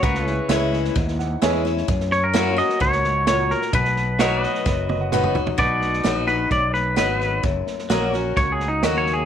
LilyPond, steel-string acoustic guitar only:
\new Staff \with { instrumentName = "Steel-string acoustic guitar" } { \time 4/4 \key b \major \tempo 4 = 130 << { r4 <e gis cis' e'>4 r4 <e gis cis' e'>8 <cis' e'>8 | r4 <fis ais cis' fis'>8 <cis' fis'>8 r2 | r4 <fis b dis' fis'>4 r4 <fis b dis' fis'>8 <dis' fis'>8 | r4 <fis b dis' fis'>8 <dis' fis'>8 r4 <fis b dis' fis'>4 |
r4 <fis ais cis' fis'>8 <cis' fis'>8 r4 <fis ais cis' fis'>4 | } \\ { cis2 gis,2 | fis,2 gis,4 ais,4 | b,2 fis,2 | b,2 fis,2 |
fis,2 cis2 | } >> }